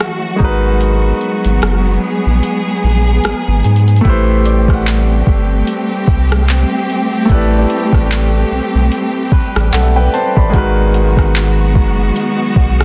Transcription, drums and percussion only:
0.01 cross-stick
0.40 kick, closed hi-hat
0.81 closed hi-hat
1.21 closed hi-hat
1.45 closed hi-hat
1.62 cross-stick, closed hi-hat
2.43 closed hi-hat
3.24 cross-stick, closed hi-hat
3.64 closed hi-hat
3.76 closed hi-hat
3.88 closed hi-hat
3.96 closed hi-hat
4.05 kick, closed hi-hat
4.45 closed hi-hat
4.68 kick, cross-stick
4.86 clap, closed hi-hat
5.27 kick
5.67 closed hi-hat
6.08 kick
6.32 cross-stick
6.48 clap, closed hi-hat
6.90 closed hi-hat
7.29 kick, closed hi-hat
7.70 closed hi-hat
7.93 kick, cross-stick
8.11 clap, closed hi-hat
8.92 closed hi-hat
9.32 kick
9.56 cross-stick
9.72 clap, closed hi-hat
10.14 closed hi-hat
10.37 kick
10.54 kick, closed hi-hat
10.94 closed hi-hat
11.17 kick, cross-stick
11.35 clap, closed hi-hat
11.75 kick
12.16 closed hi-hat
12.56 kick
12.81 cross-stick

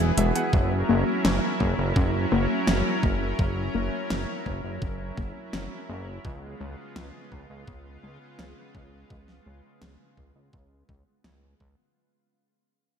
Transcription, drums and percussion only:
0.00 closed hi-hat
0.18 closed hi-hat
0.36 closed hi-hat
0.53 kick
1.25 snare
1.60 kick
1.96 kick
2.67 snare
3.03 kick
3.39 kick
4.10 snare
4.46 kick
4.82 kick
5.18 kick
5.53 snare
6.25 kick
6.96 snare
7.32 kick
7.68 kick
8.39 snare
8.75 kick
9.10 kick
9.28 snare
9.82 snare
10.17 kick
10.53 kick
10.89 kick
11.24 snare
11.60 kick

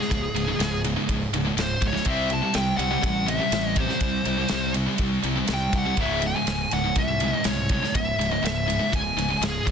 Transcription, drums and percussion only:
0.01 snare
0.11 kick, ride
0.36 ride
0.60 snare, ride
0.84 ride
1.09 kick, ride
1.34 ride
1.58 snare, ride
1.82 kick, ride
1.96 snare
2.05 kick, ride
2.30 ride
2.54 snare, ride
2.79 ride
3.03 kick, ride
3.28 ride
3.52 snare, ride
3.76 kick, ride
3.89 snare
4.00 kick, ride
4.25 ride
4.48 snare, ride
4.74 ride
4.98 kick, ride
5.23 ride
5.47 snare, ride
5.73 kick, ride
5.97 kick, ride
6.22 ride
6.47 snare, ride
6.71 ride
6.96 kick, ride
7.20 ride
7.44 snare, ride
7.69 kick, ride
7.84 snare
7.95 kick, ride
8.21 ride
8.45 snare, ride
8.70 ride
8.93 kick, ride
9.18 ride
9.42 snare, ride
9.67 kick, ride

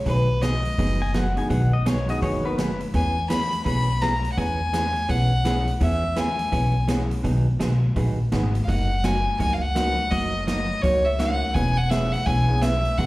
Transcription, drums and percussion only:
0.06 kick, open hi-hat
0.42 snare, closed hi-hat
0.65 open hi-hat
0.78 kick, open hi-hat
1.14 snare, closed hi-hat
1.37 open hi-hat
1.50 kick, open hi-hat
1.86 snare, closed hi-hat
2.09 open hi-hat
2.22 kick, open hi-hat
2.58 snare, closed hi-hat
2.80 open hi-hat
2.94 kick, open hi-hat
3.30 snare, closed hi-hat
3.53 open hi-hat
3.66 kick, open hi-hat
4.02 snare, closed hi-hat
4.25 open hi-hat
4.37 kick, open hi-hat
4.74 snare, closed hi-hat
4.96 open hi-hat
5.09 kick, open hi-hat
5.45 snare, closed hi-hat
5.67 open hi-hat
5.81 kick, open hi-hat
6.16 snare, closed hi-hat
6.39 open hi-hat
6.52 kick, open hi-hat
6.88 snare, closed hi-hat
7.11 open hi-hat
7.24 kick, open hi-hat
7.60 snare, closed hi-hat
7.96 kick, open hi-hat
8.32 snare, closed hi-hat
8.55 open hi-hat
8.68 kick, open hi-hat
9.04 snare, closed hi-hat
9.40 kick, open hi-hat
9.76 snare, closed hi-hat
10.12 kick, open hi-hat
10.48 snare, closed hi-hat
10.83 kick, open hi-hat
11.20 snare, closed hi-hat
11.55 kick, open hi-hat
11.91 snare, closed hi-hat
12.14 open hi-hat
12.26 kick, open hi-hat
12.62 snare, closed hi-hat
12.85 open hi-hat
12.98 kick, open hi-hat

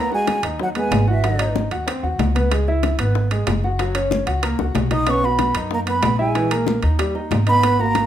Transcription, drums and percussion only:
0.12 high bongo, high conga
0.27 high bongo, high conga, high timbale, low timbale
0.43 high conga, high timbale
0.59 high bongo, high conga
0.75 high bongo, high conga, high timbale
0.91 high bongo, low bongo, high conga, high timbale, low timbale
1.08 high bongo, high conga
1.24 high bongo, high conga, high timbale
1.39 high bongo, high conga, high timbale
1.55 high bongo, high conga, low timbale
1.71 high conga, high timbale
1.88 high bongo, high conga, high timbale
2.04 high bongo, high conga
2.19 high bongo, low bongo, high conga, high timbale, low timbale
2.35 high bongo, high conga, high timbale
2.52 high bongo, high timbale
2.68 high bongo, high conga
2.83 high bongo, high conga, high timbale, low timbale
2.99 high conga, high timbale
3.15 high bongo, high conga
3.31 high bongo, high conga, high timbale
3.47 high bongo, low bongo, high conga, high timbale, low timbale
3.64 high bongo, high conga
3.79 high bongo, high conga, high timbale
3.95 high bongo, high conga, high timbale
4.11 high bongo, high conga, low timbale
4.27 high conga, high timbale
4.43 high bongo, high conga, high timbale
4.59 high bongo, high conga
4.75 low bongo, high conga, high timbale, low timbale
4.91 low bongo, high timbale
5.07 high bongo, high conga, high timbale
5.23 high bongo, high conga
5.39 high bongo, high conga, high timbale, low timbale
5.55 high conga, high timbale
5.71 high bongo, high conga
5.87 high bongo, high conga, high timbale
6.03 high bongo, low bongo, high conga, high timbale, low timbale
6.19 high bongo, high conga
6.35 high bongo, high conga, high timbale
6.51 high bongo, high conga, high timbale
6.67 high bongo, high conga, low timbale
6.83 high conga, high timbale
6.99 high bongo, high conga, high timbale
7.15 high bongo, high conga
7.31 high bongo, low bongo, high conga, high timbale, low timbale
7.47 high bongo, high timbale
7.63 high bongo, high conga, high timbale
7.79 high bongo, high conga
7.95 high bongo, high conga, high timbale, low timbale

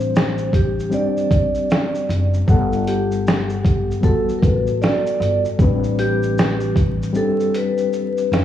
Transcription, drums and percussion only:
0.00 shaker
0.15 snare, shaker
0.38 shaker
0.53 kick, closed hi-hat, shaker
0.79 shaker
0.92 shaker
1.17 shaker
1.31 kick, closed hi-hat, shaker
1.55 shaker
1.70 snare, shaker
1.95 shaker
2.10 closed hi-hat, shaker
2.34 shaker
2.48 kick, shaker
2.72 shaker
2.87 closed hi-hat, shaker
3.12 shaker
3.27 snare, shaker
3.49 shaker
3.65 kick, closed hi-hat, shaker
3.91 shaker
4.03 kick, shaker
4.29 shaker
4.42 kick, closed hi-hat, shaker
4.67 shaker
4.82 snare, shaker
5.06 shaker
5.22 closed hi-hat, shaker
5.45 shaker
5.59 kick, shaker
5.84 shaker
5.99 closed hi-hat, shaker
6.23 shaker
6.38 snare, shaker
6.61 shaker
6.76 kick, closed hi-hat, shaker
7.03 shaker
7.15 shaker
7.40 shaker
7.55 closed hi-hat, shaker
7.78 shaker
7.93 shaker
8.18 shaker
8.33 snare, closed hi-hat, shaker

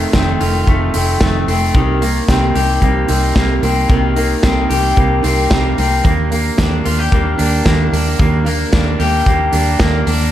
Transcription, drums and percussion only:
0.13 kick, snare, closed hi-hat
0.41 open hi-hat
0.67 kick, closed hi-hat
0.94 open hi-hat
1.21 kick, snare
1.48 open hi-hat
1.75 kick, closed hi-hat
2.02 open hi-hat
2.29 kick, snare, closed hi-hat
2.56 open hi-hat
2.82 kick, closed hi-hat
3.09 open hi-hat
3.36 kick, snare
3.63 open hi-hat
3.90 kick, closed hi-hat
4.16 open hi-hat
4.43 kick, snare, closed hi-hat
4.71 open hi-hat
4.97 kick, closed hi-hat
5.24 open hi-hat
5.51 kick, snare, closed hi-hat
5.78 open hi-hat
6.05 kick, closed hi-hat
6.32 open hi-hat
6.58 kick, snare, closed hi-hat
6.86 open hi-hat
7.12 kick, closed hi-hat
7.39 open hi-hat
7.66 kick, snare
7.94 open hi-hat
8.20 kick
8.46 open hi-hat
8.73 kick, snare, closed hi-hat
9.00 open hi-hat
9.26 kick, closed hi-hat
9.53 open hi-hat
9.80 kick, snare, closed hi-hat
10.07 open hi-hat

